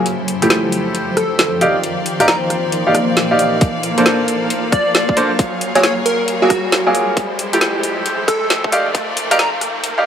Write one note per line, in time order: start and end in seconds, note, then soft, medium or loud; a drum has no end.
0.00 riser medium
0.06 2.44 F3 medium
0.06 1.60 E4 medium
0.06 3.58 G4 medium
0.06 1.60 A4 medium
0.06 1.60 C5 medium
0.06 closed hi-hat medium
0.23 2.44 C5 medium
0.28 open hi-hat loud
0.42 1.59 F3 medium
0.42 1.59 A3 medium
0.42 1.59 E4 medium
0.42 1.59 G4 medium
0.42 closed hi-hat medium
0.50 snare loud
0.50 closed hi-hat medium
0.66 2.44 G5 medium
0.72 open hi-hat loud
0.95 closed hi-hat medium
1.17 1.67 A4 loud
1.17 cross-stick medium
1.17 open hi-hat loud
1.39 snare loud
1.39 closed hi-hat medium
1.61 3.61 D#4 medium
1.61 1.74 D#4 medium
1.61 1.74 G4 medium
1.61 3.59 A#4 medium
1.61 1.74 D5 medium
1.61 5.35 D5 medium
1.61 1.74 F5 loud
1.61 7.13 F5 medium
1.61 open hi-hat loud
1.74 6.01 A#3 medium
1.84 closed hi-hat medium
2.06 open hi-hat medium
2.20 2.27 D#4 medium
2.20 2.27 G4 medium
2.20 2.27 D5 medium
2.20 2.27 F5 medium
2.20 2.25 A#5 medium
2.20 cross-stick medium
2.20 closed hi-hat medium
2.28 2.37 A#5 medium
2.28 snare loud
2.28 closed hi-hat medium
2.50 6.12 F5 medium
2.50 cross-stick soft
2.50 open hi-hat loud
2.72 closed hi-hat medium
2.87 2.94 D#4 medium
2.87 2.94 G4 medium
2.87 2.94 D5 medium
2.87 2.94 F5 medium
2.95 cross-stick medium
2.95 open hi-hat loud
3.17 snare loud
3.17 closed hi-hat medium
3.31 3.60 D#4 medium
3.31 3.60 G4 medium
3.31 3.60 D5 medium
3.31 3.60 F5 medium
3.39 open hi-hat loud
3.61 5.37 A#3 medium
3.61 5.37 A4 medium
3.61 5.37 C5 medium
3.61 kick loud
3.61 closed hi-hat medium
3.83 open hi-hat medium
3.98 5.15 A#3 medium
3.98 5.15 D4 medium
3.98 5.15 A4 medium
3.98 5.15 C5 medium
3.98 closed hi-hat medium
4.06 snare loud
4.06 closed hi-hat medium
4.28 open hi-hat loud
4.44 6.11 C6 medium
4.50 closed hi-hat medium
4.72 5.36 D5 loud
4.72 kick loud
4.72 cross-stick medium
4.72 open hi-hat loud
4.95 snare loud
4.95 closed hi-hat medium
5.09 kick loud
5.17 5.30 A#3 medium
5.17 5.30 D4 medium
5.17 5.30 A4 medium
5.17 5.30 C5 loud
5.17 open hi-hat loud
5.39 7.17 F#3 medium
5.39 7.15 G#4 medium
5.39 7.15 A#4 medium
5.39 7.15 C#5 medium
5.39 kick loud
5.39 closed hi-hat medium
5.61 open hi-hat loud
5.75 5.83 F#3 medium
5.75 5.83 A#3 medium
5.75 5.83 F4 medium
5.75 5.83 G#4 medium
5.75 5.81 C#5 medium
5.75 closed hi-hat medium
5.83 5.93 C#5 medium
5.83 snare loud
5.83 closed hi-hat medium
5.88 7.17 C#5 medium
6.06 6.25 A#4 medium
6.06 open hi-hat loud
6.28 closed hi-hat medium
6.42 6.49 F#3 medium
6.42 6.49 A#3 medium
6.42 6.49 F4 medium
6.42 6.87 F#4 medium
6.42 6.49 G#4 medium
6.50 kick loud
6.50 cross-stick medium
6.50 open hi-hat loud
6.72 snare loud
6.72 closed hi-hat medium
6.87 7.16 F#3 medium
6.87 7.16 A#3 medium
6.87 7.16 F4 medium
6.87 7.16 G#4 medium
6.95 open hi-hat loud
7.16 9.55 F3 medium
7.16 8.71 E4 medium
7.16 10.06 G4 medium
7.16 8.71 A4 medium
7.16 8.71 C5 medium
7.16 kick loud
7.16 closed hi-hat medium
7.39 open hi-hat loud
7.53 8.70 F3 medium
7.53 8.70 A3 medium
7.53 8.71 E4 medium
7.53 8.70 G4 medium
7.53 9.55 C5 loud
7.53 closed hi-hat medium
7.61 snare loud
7.61 closed hi-hat medium
7.83 open hi-hat loud
7.88 9.55 G5 medium
8.06 closed hi-hat medium
8.28 8.78 A4 loud
8.28 kick loud
8.28 cross-stick medium
8.28 open hi-hat loud
8.50 snare loud
8.50 closed hi-hat medium
8.64 kick loud
8.72 8.85 D#4 medium
8.72 10.06 D#4 medium
8.72 10.06 F4 medium
8.72 8.85 G4 medium
8.72 10.06 A#4 medium
8.72 8.85 D5 medium
8.72 10.06 D5 medium
8.72 8.85 F5 loud
8.72 open hi-hat loud
8.95 kick loud
8.95 closed hi-hat medium
9.17 open hi-hat loud
9.31 9.38 D#4 medium
9.31 9.38 G4 medium
9.31 9.38 D5 medium
9.31 9.38 F5 loud
9.31 9.36 A#5 medium
9.31 cross-stick medium
9.31 closed hi-hat medium
9.39 9.48 A#5 medium
9.39 snare loud
9.39 closed hi-hat medium
9.61 cross-stick soft
9.61 open hi-hat loud
9.84 closed hi-hat medium
9.98 10.04 D#4 medium
9.98 10.04 G4 medium
9.98 10.04 D5 medium
9.98 10.04 F5 medium